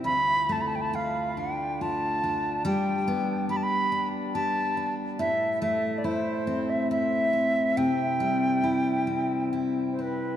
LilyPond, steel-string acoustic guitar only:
\new Staff \with { instrumentName = "Steel-string acoustic guitar" } { \time 3/4 \key g \mixolydian \tempo 4 = 70 <d, f'>8 a8 f'8 d'8 f'8 d'8 | <g g'>8 b8 g'8 d'8 g'8 d'8 | <a, e'>8 a8 e'8 c'8 e'8 c'8 | <c e'>8 g8 e'8 c'8 e'8 c'8 | }